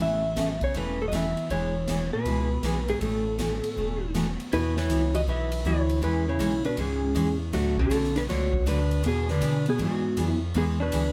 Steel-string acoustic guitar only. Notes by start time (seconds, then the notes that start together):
0.00 C#3 E3 A3 C#4 A4
0.36 C#3 E3 A3 C#4 A4
0.75 C#3 E3 A3 C#4 A4
1.12 C#3 E3 A3 C#4 A4
1.51 E3 G#3 B3 E4 G#4
1.88 E3 G#3 B3 E4 G#4
2.26 E3 G#3 B3 E4 G#4
2.64 E3 G#3 B3 E4 G#4
3.02 B2 E3 A3 C#4 A4
3.39 B2 E3 A3 C#4 A4
3.77 B2 E3 A3 C#4 A4
4.14 B2 E3 A3 C#4 A4
4.54 E3 B3 E4 F#4
4.90 E3 B3 E4 F#4
5.27 E3 B3 E4 F#4
5.65 E3 B3 E4 F#4
6.01 E3 G#3 C#4 G#4 C#5
6.39 E3 G#3 C#4 G#4 C#5
6.77 E3 G#3 C#4 G#4 C#5
7.15 E3 G#3 C#4 G#4 C#5
7.53 D3 F#3 A3 D4 F#4
7.90 D3 F#3 A3 D4 F#4
8.29 D3 F#3 A3 D4 F#4
8.66 D3 F#3 A3 D4 F#4
9.03 E3 B3 D4 G#4
9.41 E3 B3 D4 G#4
9.78 E3 B3 D4 G#4
10.17 E3 B3 D4 G#4
10.54 E3 G#3 B3 E4 G#4
10.92 E3 G#3 B3 E4 G#4